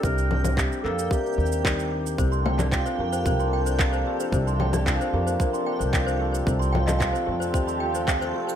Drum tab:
SH |x-x---x-x-x---x-x-xxxxx-x-x---x-|x-x---x-x-x---x-x-x---x-x-x---x-|x-x---x-x-x---x-x-x---x-x-x---x-|x-x---x-x-x---x-x-x---x-x-x---x-|
CP |--------x---x-----------x-------|------x-x---------------x-------|--------x---------------x-------|------x-x---------------x-------|
CG |----O-O-------------------------|----O-O-------------------------|----O-O-------------------------|----O-O-------------------------|
BD |o-------o-------o-------o-------|o-------o-------o-------o-------|o-------o-------o-------o-------|o-------o-------o-------o-------|